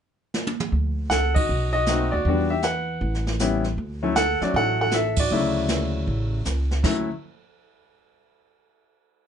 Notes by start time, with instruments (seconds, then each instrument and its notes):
0.34 snare
0.47 high tom
0.60 mid tom
0.72 upright bass D2, brush sweep, kick
1.10 upright bass C#2, grand piano A4 F#5, snare, hi-hat pedal
1.34 grand piano F#4 D#5, kick, ride
1.49 upright bass B1, brush sweep
1.73 grand piano F#4 D#5
1.86 grand piano A3 C4 D#4 F#4, snare, hi-hat pedal
2.11 upright bass D#2, grand piano F#4 D5
2.24 upright bass E2, grand piano G3 B3 D4, brush sweep, kick
2.28 grand piano F#4
2.50 grand piano G4 E5
2.62 grand piano B4 F#5, snare, hi-hat pedal
3.01 upright bass A1, brush sweep, kick
3.14 snare
3.27 snare
3.39 grand piano G3 B3 C#4 E4, snare, hi-hat pedal
3.64 snare
3.77 upright bass D2, brush sweep, kick
4.03 grand piano F#3 A3 C#4 E4
4.15 grand piano A4 F#5, snare, hi-hat pedal
4.41 grand piano F#3 A3 C#4 F#4 D5, muted upright bass stroke, snare
4.54 upright bass A1, grand piano A4 F#5, brush sweep, kick
4.81 grand piano A4 F#5
4.91 grand piano A4 E5, snare, hi-hat pedal
5.16 grand piano F#4 D5, kick, ride
5.30 upright bass D2, grand piano C#3 F#3 A3 E4, brush sweep
5.68 snare, hi-hat pedal
6.07 upright bass A1, brush sweep, kick
6.45 upright bass C#2, snare, hi-hat pedal
6.71 snare
6.83 upright bass D2, grand piano F#3 A3 C#4 E4, kick, snare, crash